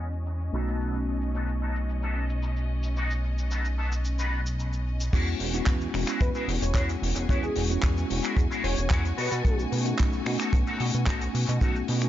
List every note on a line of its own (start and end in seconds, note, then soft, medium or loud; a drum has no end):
0.00 0.51 E2 medium
0.00 0.50 G#3 medium
0.00 0.50 B3 medium
0.00 0.50 C#4 medium
0.00 5.14 C#4 medium
0.00 0.50 E4 medium
0.00 0.51 F#4 medium
0.00 5.14 D#5 medium
0.12 cabasa medium
0.26 muted clean electric guitar stroke medium
0.26 cabasa medium
0.40 muted clean electric guitar stroke soft
0.40 cabasa soft
0.53 5.10 B1 medium
0.53 4.82 A3 medium
0.53 4.82 B3 medium
0.53 0.97 B3 medium
0.53 4.83 C#4 medium
0.53 4.83 D#4 medium
0.53 0.97 D#4 medium
0.53 4.83 F#4 medium
0.53 0.97 A4 loud
0.68 cabasa medium
0.81 cabasa medium
0.94 cabasa soft
1.08 muted clean electric guitar stroke soft
1.22 cabasa medium
1.35 1.49 B3 medium
1.35 1.49 D#4 medium
1.35 1.49 A4 medium
1.35 cabasa medium
1.48 cabasa soft
1.62 1.76 B3 medium
1.62 1.76 D#4 medium
1.62 1.76 A4 medium
1.76 cabasa medium
1.89 muted clean electric guitar stroke soft
1.89 cabasa medium
2.03 2.23 B3 medium
2.03 2.23 D#4 medium
2.03 2.23 A4 loud
2.03 cabasa soft
2.30 cabasa medium
2.42 muted clean electric guitar stroke medium
2.42 cabasa medium
2.56 muted clean electric guitar stroke soft
2.56 cabasa soft
2.83 muted clean electric guitar stroke soft
2.83 cabasa medium
2.96 3.11 B3 medium
2.96 3.11 D#4 medium
2.96 3.11 F#4 loud
2.96 cabasa medium
3.10 cabasa soft
3.24 muted clean electric guitar stroke soft
3.38 cabasa medium
3.51 3.65 B3 medium
3.51 3.65 D#4 medium
3.51 3.65 A4 medium
3.51 cabasa medium
3.65 cabasa soft
3.78 3.92 B3 medium
3.78 3.92 D#4 medium
3.78 3.92 A4 medium
3.92 cabasa medium
4.05 muted clean electric guitar stroke soft
4.05 cabasa medium
4.19 4.39 B3 medium
4.19 4.39 D#4 medium
4.19 4.39 B4 loud
4.19 cabasa soft
4.46 cabasa medium
4.59 muted clean electric guitar stroke medium
4.59 cabasa medium
4.73 muted clean electric guitar stroke soft
4.73 cabasa soft
5.00 muted clean electric guitar stroke soft
5.00 cabasa medium
5.13 5.35 E2 loud
5.13 5.50 G#3 medium
5.13 5.50 B3 medium
5.13 5.27 C#4 loud
5.13 5.51 C#4 medium
5.13 5.51 E4 medium
5.13 5.27 E4 medium
5.13 5.27 F#4 medium
5.13 12.09 F#4 medium
5.13 5.51 F#4 medium
5.13 5.27 G#4 loud
5.13 12.09 G#5 medium
5.13 kick loud
5.13 closed hi-hat medium
5.13 crash loud
5.13 cabasa medium
5.27 cabasa soft
5.40 5.61 E1 medium
5.40 muted clean electric guitar stroke soft
5.40 open hi-hat loud
5.53 5.91 G#3 medium
5.53 5.91 B3 medium
5.53 5.91 C#4 medium
5.53 5.91 E4 medium
5.53 5.91 F#4 loud
5.53 closed hi-hat medium
5.53 cabasa medium
5.67 5.88 E2 medium
5.67 kick loud
5.67 clap loud
5.67 closed hi-hat medium
5.67 cabasa medium
5.81 muted clean electric guitar stroke soft
5.81 cabasa medium
5.93 6.05 E1 medium
5.93 7.26 G#3 medium
5.93 7.26 B3 medium
5.93 7.26 C#4 medium
5.93 7.26 E4 medium
5.93 7.27 F#4 medium
5.93 finger snap medium
5.93 muted clean electric guitar stroke medium
5.93 open hi-hat medium
6.07 6.21 C#4 medium
6.07 6.21 E4 medium
6.07 6.21 F#4 medium
6.07 6.21 G#4 medium
6.07 finger snap medium
6.07 closed hi-hat medium
6.07 cabasa medium
6.21 6.32 E2 medium
6.21 6.30 B4 loud
6.21 kick loud
6.21 closed hi-hat medium
6.21 cabasa medium
6.35 6.48 C#4 medium
6.35 6.48 E4 loud
6.35 6.48 F#4 medium
6.35 6.48 G#4 loud
6.35 6.43 B4 medium
6.35 cabasa soft
6.48 6.59 E1 loud
6.48 open hi-hat loud
6.62 6.72 E1 medium
6.62 6.71 C#5 medium
6.62 muted clean electric guitar stroke soft
6.62 closed hi-hat medium
6.62 cabasa medium
6.74 6.96 E2 medium
6.74 6.89 C#4 medium
6.74 6.89 E4 medium
6.74 6.89 F#4 medium
6.74 6.89 G#4 medium
6.74 6.84 C#5 medium
6.74 kick loud
6.74 clap loud
6.74 closed hi-hat medium
6.74 cabasa medium
6.89 closed hi-hat medium
6.89 cabasa medium
7.02 7.13 E1 medium
7.02 muted clean electric guitar stroke soft
7.02 open hi-hat loud
7.16 7.26 E1 loud
7.16 closed hi-hat medium
7.16 cabasa medium
7.29 7.51 E2 loud
7.29 7.66 G#3 medium
7.29 7.66 B3 medium
7.29 7.43 C#4 loud
7.29 7.67 C#4 medium
7.29 7.67 E4 medium
7.29 7.43 E4 medium
7.29 7.43 F#4 loud
7.29 7.67 F#4 medium
7.29 7.43 G#4 loud
7.29 7.41 C#5 medium
7.29 kick loud
7.29 closed hi-hat medium
7.29 cabasa medium
7.43 7.63 G#4 medium
7.43 cabasa soft
7.56 7.78 E1 medium
7.56 muted clean electric guitar stroke soft
7.56 open hi-hat loud
7.70 8.07 G#3 medium
7.70 8.07 B3 medium
7.70 8.07 C#4 medium
7.70 8.07 E4 medium
7.70 8.07 F#4 loud
7.70 closed hi-hat medium
7.70 cabasa medium
7.83 8.05 E2 medium
7.83 kick loud
7.83 clap loud
7.83 closed hi-hat medium
7.83 cabasa medium
7.96 muted clean electric guitar stroke soft
7.96 cabasa soft
8.09 8.21 E1 medium
8.09 9.16 G#3 medium
8.09 9.16 B3 medium
8.09 9.17 C#4 medium
8.09 9.17 E4 medium
8.09 9.17 F#4 medium
8.09 muted clean electric guitar stroke medium
8.09 open hi-hat loud
8.23 8.37 C#4 medium
8.23 8.37 E4 medium
8.23 8.37 F#4 medium
8.23 8.37 G#4 medium
8.23 finger snap medium
8.23 closed hi-hat medium
8.23 cabasa medium
8.37 8.48 E2 medium
8.37 kick loud
8.37 closed hi-hat medium
8.37 cabasa medium
8.50 8.64 C#4 loud
8.50 8.63 E4 loud
8.50 8.64 F#4 medium
8.50 8.64 G#4 loud
8.50 cabasa medium
8.64 8.75 E1 loud
8.64 8.84 C#5 medium
8.64 8.89 G#5 medium
8.64 open hi-hat loud
8.77 8.88 E1 medium
8.77 muted clean electric guitar stroke soft
8.77 closed hi-hat medium
8.77 cabasa medium
8.90 9.12 E2 medium
8.90 9.05 C#4 medium
8.90 9.05 E4 medium
8.90 9.05 F#4 medium
8.90 9.05 G#4 medium
8.90 9.16 F#5 medium
8.90 kick loud
8.90 clap loud
8.90 closed hi-hat medium
8.90 cabasa medium
9.05 closed hi-hat medium
9.05 cabasa soft
9.17 9.29 B2 medium
9.17 9.62 B3 medium
9.17 9.62 D#4 medium
9.17 9.62 F#4 medium
9.17 9.62 A4 loud
9.17 9.59 B4 medium
9.17 9.43 D#5 medium
9.17 open hi-hat loud
9.32 9.42 B2 loud
9.32 closed hi-hat medium
9.32 cabasa medium
9.44 9.66 B1 loud
9.44 9.82 A3 medium
9.44 9.82 B3 medium
9.44 9.83 C#4 medium
9.44 9.83 D#4 medium
9.44 9.83 F#4 medium
9.44 kick loud
9.44 closed hi-hat medium
9.44 cabasa medium
9.59 cabasa soft
9.72 9.94 B2 medium
9.72 muted clean electric guitar stroke soft
9.72 open hi-hat loud
9.85 10.23 A3 medium
9.85 10.23 B3 medium
9.85 10.23 C#4 medium
9.85 10.23 D#4 medium
9.85 10.23 F#4 loud
9.85 closed hi-hat medium
9.85 cabasa medium
9.99 10.21 B1 medium
9.99 kick loud
9.99 clap loud
9.99 closed hi-hat medium
9.99 cabasa medium
10.13 muted clean electric guitar stroke soft
10.13 cabasa medium
10.25 10.37 B2 medium
10.25 11.58 A3 medium
10.25 11.58 B3 medium
10.25 11.58 C#4 medium
10.25 11.58 D#4 medium
10.25 11.59 F#4 medium
10.25 finger snap medium
10.25 muted clean electric guitar stroke medium
10.25 open hi-hat loud
10.40 10.54 B3 medium
10.40 10.54 D#4 medium
10.40 10.54 F#4 medium
10.40 10.54 A4 loud
10.40 finger snap medium
10.40 closed hi-hat medium
10.40 cabasa medium
10.53 10.64 B1 medium
10.53 kick loud
10.53 closed hi-hat medium
10.53 cabasa medium
10.67 10.81 B3 loud
10.67 10.80 D#4 loud
10.67 10.81 F#4 loud
10.67 10.81 A4 loud
10.67 cabasa soft
10.80 10.91 B2 loud
10.80 open hi-hat loud
10.94 11.05 B2 medium
10.94 muted clean electric guitar stroke soft
10.94 closed hi-hat medium
10.94 cabasa medium
11.07 11.29 B1 medium
11.07 11.21 B3 medium
11.07 11.22 D#4 medium
11.07 11.22 F#4 medium
11.07 11.22 A4 medium
11.07 kick loud
11.07 clap loud
11.07 closed hi-hat medium
11.07 cabasa medium
11.21 closed hi-hat medium
11.21 cabasa soft
11.34 11.45 B2 medium
11.34 muted clean electric guitar stroke soft
11.34 open hi-hat loud
11.49 11.59 B2 loud
11.49 closed hi-hat medium
11.49 cabasa medium
11.61 11.83 B1 medium
11.61 11.99 A3 medium
11.61 11.99 B3 medium
11.61 11.76 B3 loud
11.61 11.99 C#4 medium
11.61 11.99 D#4 medium
11.61 11.76 D#4 medium
11.61 11.99 F#4 medium
11.61 11.76 F#4 medium
11.61 11.76 A4 loud
11.61 kick loud
11.61 closed hi-hat medium
11.61 cabasa medium
11.76 cabasa soft
11.88 12.09 B2 medium
11.88 muted clean electric guitar stroke soft
11.88 open hi-hat loud
12.01 12.09 A3 medium
12.01 12.09 B3 medium
12.01 12.09 C#4 medium
12.01 12.09 D#4 medium
12.01 12.09 F#4 loud
12.01 finger snap medium
12.01 closed hi-hat medium
12.01 cabasa medium